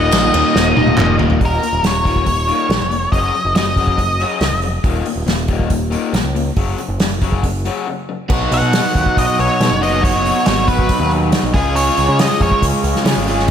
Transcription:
Already playing: D#1 D#2 A#2 D#3 D#5
0.11 A#1 D#2 A#2 D#3, snare, clap, ride
0.33 D#2 A#2 D#3, ride
0.54 D#1 D#2 A#2 D#3, snare
0.76 D#1 D#2 A#2 D#3, high tom
0.87 high tom
0.97 F1 D#2 A#2 D#3, clap, mid tom
1.19 D#1 D#2 A#2 D#3, floor tom
1.30 floor tom
1.39 D#1 D#2 A#2 D#3, kick, open hi-hat
1.45 A#4
1.61 D#2 A#2, open hi-hat
1.73 D#1
1.82 D#1 D#2 A#2, snare, open hi-hat
1.87 C#5
2.04 D#2 A#2 D#3, kick, open hi-hat
2.16 kick
2.26 D#2 A#2, kick, open hi-hat
2.47 D#2 A#2 D#3, open hi-hat
2.69 A#1 D#2 A#2, snare, open hi-hat
2.80 F1
2.90 D#2 A#2, open hi-hat
3.12 F#1 F#2 C#3 F#3 D#5, kick, open hi-hat
3.35 F#2 C#3, open hi-hat
3.45 F#1
3.55 F#1 F#2 C#3 D#5, snare, open hi-hat
3.77 F#2 C#3 F#3, kick, open hi-hat
3.88 kick
3.98 F#2 C#3, kick, open hi-hat
4.20 F#2 C#3 F#3, open hi-hat
4.41 C#2 F#2 C#3, snare, open hi-hat
4.52 F1
4.62 F#2 C#3, open hi-hat
4.84 D#1 D#2 A#2 D#3, kick, open hi-hat
5.06 D#2 A#2, open hi-hat
5.16 D#1
5.26 D#1 D#2 A#2, snare, open hi-hat
5.48 D#2 A#2 D#3, kick, open hi-hat
5.60 kick
5.70 D#2 A#2, kick, open hi-hat
5.90 D#2 A#2 D#3, open hi-hat
6.13 A#1 D#2 A#2, snare, open hi-hat
6.24 C#2
6.35 D#2 A#2, open hi-hat
6.57 F#1 F#2 C#3 F#3, kick, open hi-hat
6.78 F#2 C#3, open hi-hat
6.89 F#1
7.00 F#1 F#2 C#3, snare, open hi-hat
7.22 F#2 C#3 F#3, kick, open hi-hat
7.33 kick
7.43 F#2 C#3, kick, open hi-hat
7.65 F#2 C#3 F#3, open hi-hat
7.87 F#2 C#3
8.09 F#2 C#3
8.29 B1 B2 F#3 B3 D#4 F#4, kick, crash
8.51 B1 F#5, open hi-hat
8.62 B2
8.73 snare, open hi-hat
8.95 D#2, kick, open hi-hat
9.06 kick
9.17 B1 D#5, kick, open hi-hat
9.39 B1 C#5, open hi-hat
9.60 B2, snare, open hi-hat
9.71 F#1
9.81 B2 F#3 B3 D#4 F#4 D#5, open hi-hat
10.03 B2 F#3 B3 D#4 F#4 C#5, kick, open hi-hat
10.25 open hi-hat
10.46 G#1 C#5, snare, open hi-hat
10.68 B4, kick, open hi-hat
10.79 kick
10.89 kick, open hi-hat
11.00 D#2
11.11 open hi-hat
11.32 snare, open hi-hat
11.43 B1
11.54 C#2 C#3 G#3 C#4 F4 G#4, kick, open hi-hat
11.76 C#5, open hi-hat
11.97 C#2, open hi-hat
12.09 C#3
12.19 D#5, snare, open hi-hat
12.40 F2 C#5, kick, open hi-hat
12.52 kick
12.62 C#2, kick, open hi-hat
12.84 C#2, open hi-hat
12.96 snare
13.05 C#3 G#3 C#4 F4 G#4, snare, open hi-hat
13.16 G#1
13.27 C#3 G#3 C#4 F4 G#4, open hi-hat
13.39 snare

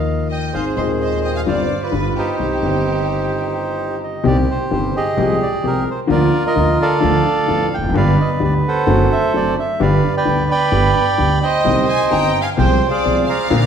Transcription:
Already playing: D#2 D#3 F3 A#3 F4 D#5 F5
0.30 D#5 G5
0.53 G#1 G#2 D#3 G#3 C4 G#4 C5 F5
0.76 D#1 D#2 D#3 G#3 C4 C5 D#5
0.80 G#4
1.01 C5 D#5
1.24 D#5 G5
1.36 F5 G#5
1.46 G1 G2 D3 G3 C4 F4 C5 D5 F5
1.82 F4 B4 D5
1.91 G1 G2 D3 G3 B3 F4
2.17 D#4 G4 C5
2.39 C2 C3 D#3 G3 C4 G4
2.61 G1 G2 D#3 G3 C4
2.65 G4
4.04 D#5
4.24 C2 C3 D#3 G3 C4 G4 D5
4.51 C5
4.71 G1 G2 D#3 G3 C4 G4 C5
4.96 G4 G#4 D#5
5.17 C2 C3 F3 G#3 C4 G4
5.43 D5
5.63 C2 C3 F3 G#3 C4 G4 A#4
5.91 C5
6.07 D2 D3 F3 A#3 F4 A#4
6.12 D5
6.46 A#4 D#5
6.56 D2 D3 F3 A#3 F4
6.82 A4 D5 F5
7.00 D2 D3 F3 A3 F4
7.47 A1 A2 D3 F3 A3 F4
7.74 E2 G5
7.78 E1
7.83 F1 F2
7.89 F#1 F#2
7.94 G1 G2 D3 G3 B3 G4 B4 D5 F5
8.20 D#5
8.40 D2 D3 G3 B3 G4
8.44 D5
8.68 A4 C5 F#5
8.87 F#1 F#2 D3 F#3 A3 C4 F#4
9.12 E5
9.34 F#1 F#2 D3 F#3 A3 C4 F#4 D5
9.59 E5
9.80 G1 G2 D3 G3 B3 G4 B4 D5 F5
10.17 B4 D5 G5
10.25 D2 D3 G3 B3 G4
10.51 D5 G5 B5
10.72 G1 G2 D3 G3 B3 G4
11.18 D2 D3 G3 B3 G4
11.42 C5 D#5 G5
11.64 C2 C3 D#3 G3 C4 G4
11.87 G#5 C6
12.10 G1 G2 D#3 G3 C4 G4 G5 A#5
12.41 F5 G#5
12.57 C2 C3 F3 G#3 C4 G#4 C5 G5
12.88 G#4 C5 D5 F5
13.05 C2 C3 F3 G#3 C4 G#4
13.26 D5 F5 A#5
13.50 A#1 A#2 D3 F3 A#3 F4

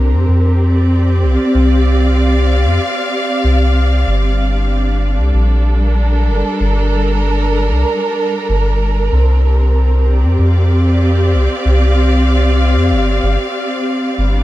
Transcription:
Already playing: C2 C4 D4 G4 A#4
0.13 F2
0.28 F2
0.62 D5
1.23 C2
1.29 F5
1.55 C2
2.65 F2
3.44 C2
4.07 G1 G3
4.28 D4
5.15 C2 A4
5.34 A#1
5.83 A#4
6.29 G1
6.60 G1
7.70 C2
8.49 G1
9.12 C2 C4
9.39 G4
10.08 D5
10.23 F2
10.39 F2
10.45 F5
11.34 C2
11.65 C2
12.76 F2
12.92 G1
13.23 G1
14.17 G1 G3
14.26 D4

